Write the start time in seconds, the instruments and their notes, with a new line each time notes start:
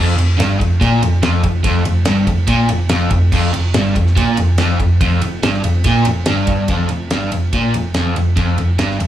Already playing: picked electric bass F1, overdriven electric guitar F2
0.17 picked electric bass F1, overdriven electric guitar F2, ride
0.38 picked electric bass G1, overdriven electric guitar G2, snare, ride
0.60 picked electric bass F1, overdriven electric guitar F2, kick, ride
0.81 picked electric bass A#1, overdriven electric guitar A#2, kick, ride
1.02 picked electric bass F1, overdriven electric guitar F2, ride
1.22 picked electric bass F1, overdriven electric guitar F2, snare, ride
1.44 picked electric bass F1, overdriven electric guitar F2, kick, ride
1.64 picked electric bass F1, overdriven electric guitar F2, kick, ride
1.85 picked electric bass F1, overdriven electric guitar F2, ride
2.05 picked electric bass G1, overdriven electric guitar G2, snare, ride
2.27 picked electric bass F1, overdriven electric guitar F2, kick, ride
2.47 picked electric bass A#1, overdriven electric guitar A#2, kick, ride
2.69 picked electric bass F1, overdriven electric guitar F2, ride
2.89 picked electric bass F1, overdriven electric guitar F2, snare, ride
3.10 picked electric bass F1, overdriven electric guitar F2, kick, ride
3.32 picked electric bass F1, overdriven electric guitar F2, kick, crash
3.53 picked electric bass F1, overdriven electric guitar F2, ride
3.74 picked electric bass G1, overdriven electric guitar G2, snare, ride
3.95 picked electric bass F1, overdriven electric guitar F2, kick, ride
4.07 snare
4.16 picked electric bass A#1, overdriven electric guitar A#2, kick, ride
4.37 picked electric bass F1, overdriven electric guitar F2, ride
4.58 picked electric bass F1, overdriven electric guitar F2, snare, ride
4.79 picked electric bass F1, overdriven electric guitar F2, kick, ride
5.00 picked electric bass F1, overdriven electric guitar F2, kick, ride
5.22 picked electric bass F1, overdriven electric guitar F2, ride
5.43 picked electric bass G1, overdriven electric guitar G2, snare, ride
5.53 snare
5.64 picked electric bass F1, overdriven electric guitar F2, ride
5.84 picked electric bass A#1, overdriven electric guitar A#2, kick, ride
6.05 picked electric bass F1, overdriven electric guitar F2, ride
6.26 picked electric bass G1, overdriven electric guitar G2, snare, ride
6.47 kick, ride
6.68 picked electric bass F1, overdriven electric guitar F2, kick, ride
6.89 picked electric bass F1, overdriven electric guitar F2, ride
7.11 picked electric bass G1, overdriven electric guitar G2, snare, ride
7.32 picked electric bass F1, overdriven electric guitar F2, ride
7.53 picked electric bass A#1, overdriven electric guitar A#2, kick, ride
7.74 picked electric bass F1, overdriven electric guitar F2, ride
7.94 picked electric bass F1, overdriven electric guitar F2, snare, ride
8.16 picked electric bass F1, overdriven electric guitar F2, ride
8.36 picked electric bass F1, overdriven electric guitar F2, kick, ride
8.58 picked electric bass F1, overdriven electric guitar F2, ride
8.79 picked electric bass G1, overdriven electric guitar G2, snare, ride
8.90 snare
9.00 picked electric bass F1, overdriven electric guitar F2, ride